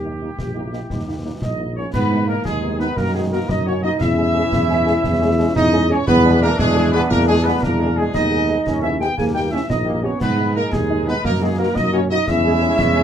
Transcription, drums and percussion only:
0.39 concert bass drum medium
0.39 snare medium
0.73 snare soft
0.90 concert bass drum medium
0.90 snare medium
1.42 concert bass drum medium
1.42 snare medium
1.94 concert bass drum medium
1.94 snare medium
1.94 crash medium
2.45 concert bass drum medium
2.45 snare medium
2.80 snare medium
2.97 concert bass drum medium
2.97 snare medium
3.49 concert bass drum medium
3.49 snare medium
4.01 concert bass drum medium
4.01 snare medium
4.01 crash soft
4.52 concert bass drum medium
4.52 snare medium
4.87 snare medium
5.04 concert bass drum medium
5.04 snare medium
5.56 concert bass drum medium
5.56 snare medium
6.08 concert bass drum loud
6.08 snare medium
6.08 crash soft
6.59 concert bass drum medium
6.59 snare medium
6.94 snare medium
7.11 concert bass drum medium
7.11 snare medium
7.63 concert bass drum medium
7.63 snare medium
8.14 concert bass drum medium
8.14 snare medium
8.14 crash soft
8.67 concert bass drum medium
8.67 snare medium
9.01 snare medium
9.18 concert bass drum medium
9.18 snare medium
9.70 concert bass drum medium
9.70 snare medium
10.21 concert bass drum medium
10.21 snare medium
10.21 crash medium
10.73 concert bass drum medium
10.73 snare medium
11.08 snare medium
11.25 concert bass drum medium
11.25 snare medium
11.76 concert bass drum medium
11.76 snare medium
12.28 concert bass drum medium
12.28 snare medium
12.28 crash soft
12.79 concert bass drum medium
12.79 snare medium

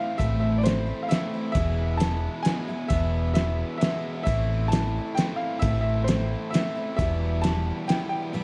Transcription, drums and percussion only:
0.20 kick medium
0.20 closed hi-hat medium
0.66 snare medium
0.66 closed hi-hat medium
1.11 snare medium
1.11 closed hi-hat medium
1.55 kick loud
1.55 closed hi-hat medium
2.00 snare medium
2.00 closed hi-hat medium
2.45 snare medium
2.45 closed hi-hat medium
2.90 kick medium
2.90 closed hi-hat medium
3.35 snare medium
3.35 closed hi-hat medium
3.81 snare medium
3.81 closed hi-hat soft
4.27 kick medium
4.27 closed hi-hat medium
4.72 snare medium
4.72 closed hi-hat medium
5.17 snare medium
5.17 closed hi-hat medium
5.62 kick loud
5.62 closed hi-hat medium
6.08 snare medium
6.08 closed hi-hat medium
6.54 snare medium
6.54 closed hi-hat medium
6.99 kick medium
6.99 closed hi-hat medium
7.44 snare medium
7.44 closed hi-hat medium
7.89 snare medium
7.89 closed hi-hat medium

